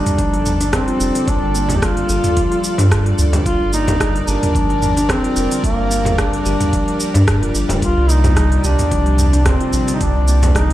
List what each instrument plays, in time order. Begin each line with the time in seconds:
Already playing: synth drone G3 A4 D5, duduk D4
0.06 mid tom, open hi-hat, shaker
0.18 analog synth bass G1, kalimba F3, kick, open hi-hat, shaker
0.33 kalimba G3, open hi-hat
0.46 mid tom, shaker
0.61 kalimba D4, open hi-hat, shaker
0.73 duduk C4, kick, cross-stick, open hi-hat, frame drum, shaker
0.88 kalimba F4, open hi-hat
1.00 analog synth bass F1, shaker
1.15 kalimba D3, open hi-hat, shaker
1.27 analog synth bass G1, kalimba G3, duduk D4, kick, open hi-hat, shaker
1.43 analog synth bass G1
1.54 kalimba A#3, shaker
1.69 mid tom, open hi-hat, frame drum, shaker
1.77 duduk G4
1.82 kalimba G3, duduk F4, kick, cross-stick, open hi-hat, shaker
1.97 open hi-hat
2.09 analog synth bass G1, kalimba G4, shaker
2.24 mid tom, open hi-hat, shaker
2.37 kalimba F3, kick, open hi-hat, shaker
2.52 kalimba G3, open hi-hat
2.64 shaker
2.78 analog synth bass G2, kalimba D4, open hi-hat, frame drum, shaker
2.91 kick, cross-stick, open hi-hat, shaker
3.06 kalimba F4, open hi-hat
3.19 analog synth bass D2, shaker
3.33 kalimba D3, open hi-hat, frame drum, shaker
3.46 analog synth bass G1, kalimba G3, duduk F4, synth drone A#4, kick, open hi-hat, shaker
3.61 analog synth bass G1
3.73 kalimba A#3, duduk D#4, shaker
3.88 mid tom, open hi-hat, frame drum, shaker
4.00 kalimba G3, kick, cross-stick, open hi-hat, shaker
4.16 open hi-hat
4.28 analog synth bass G1, duduk D4, kalimba G4, shaker
4.43 mid tom, open hi-hat, shaker
4.55 analog synth bass G1, kalimba F3, kick, open hi-hat, shaker
4.70 kalimba G3, open hi-hat
4.82 mid tom, shaker
4.97 kalimba D4, open hi-hat, shaker
5.09 duduk C4, kick, cross-stick, open hi-hat, frame drum, shaker
5.24 kalimba F4, open hi-hat
5.36 analog synth bass F1, shaker
5.51 kalimba D3, open hi-hat, shaker
5.64 analog synth bass G1, kalimba G3, duduk A#3, kick, open hi-hat, shaker
5.79 analog synth bass G1
5.91 kalimba A#3, shaker
6.05 mid tom, open hi-hat, frame drum, shaker
6.18 kalimba G3, duduk D4, kick, cross-stick, open hi-hat, shaker
6.33 open hi-hat
6.46 analog synth bass G1, kalimba G4, shaker
6.61 mid tom, open hi-hat, shaker
6.73 kalimba F3, kick, open hi-hat, shaker
6.88 kalimba G3, open hi-hat
7.00 shaker
7.14 analog synth bass G2, kalimba D4, open hi-hat, frame drum, shaker
7.28 kick, cross-stick, open hi-hat, shaker
7.42 analog synth bass F1, kalimba F4, open hi-hat
7.55 analog synth bass G1, shaker
7.69 analog synth bass D1, kalimba D3, open hi-hat, frame drum, shaker
7.82 analog synth bass C2, synth drone C3, kalimba G3, duduk F4, kick, open hi-hat, shaker
7.97 analog synth bass C2
8.09 kalimba A#3, duduk D#4, shaker
8.24 mid tom, open hi-hat, frame drum, shaker
8.37 kalimba G3, kick, cross-stick, open hi-hat, shaker
8.52 open hi-hat
8.58 duduk D#4
8.64 analog synth bass C2, duduk D4, kalimba G4, shaker
8.79 mid tom, open hi-hat, shaker
8.91 analog synth bass C2, kalimba F3, kick, open hi-hat, shaker
9.06 kalimba G3, open hi-hat
9.19 mid tom, shaker
9.33 kalimba D4, open hi-hat, shaker
9.46 duduk C4, kick, cross-stick, open hi-hat, frame drum, shaker
9.60 kalimba F4, open hi-hat
9.73 analog synth bass A#1, shaker
9.88 kalimba D3, open hi-hat, shaker
9.94 duduk D#4
10.01 analog synth bass C2, kalimba G3, duduk D4, kick, open hi-hat, shaker
10.15 analog synth bass C2
10.28 kalimba A#3, shaker
10.43 mid tom, open hi-hat, frame drum, shaker
10.55 kalimba G3, duduk D#4, kick, cross-stick, open hi-hat, shaker